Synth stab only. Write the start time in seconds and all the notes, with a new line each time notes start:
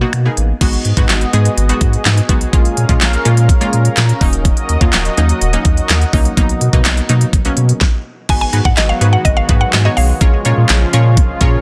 0.01 A#3 B3 D#4 F#4
0.25 A#3 B3 D#4 G#4
0.61 G#3 B3 D#4 F#4
0.97 G#3 B3 D#4 F#4
1.33 G#3 B3 D#4 G#4
1.69 G#3 B3 D#4 F#4
2.29 G#3 B3 D#4 F#4
2.53 G#3 A#3 C#4 F4
2.89 G#3 A#3 C#4 F4
3.25 G#3 A#3 C#4 F4
3.61 G#3 A#3 C#4 F4
4.21 F#3 A#3 C#4 D#4
4.81 F#3 A#3 C#4 F4
5.17 F#3 A#3 C#4 D#4
5.53 F#3 A#3 C#4 D#4
6.13 F#3 A#3 C#4 D#4
6.37 F#3 A#3 B3 D#4
6.73 F#3 A#3 B3 D#4
7.09 F#3 A#3 B3 D#4
7.45 F#3 A#3 B3 C#4
8.29 B3 D#4 F#4 G#4 B4
8.53 B3 D#4 F#4 G#4 B4
9.01 B3 D#4 F#4 G#4 B4
9.49 B3 D#4 F#4 G#4 B4
9.85 B3 D#4 F#4 G#4 C#5
10.21 C#4 F4 G#4 A#4 C#5
10.45 C#4 F4 G#4 A#4 C#5
10.93 C#4 F4 G#4 A#4 C#5
11.41 C#4 F4 G#4 A#4 C#5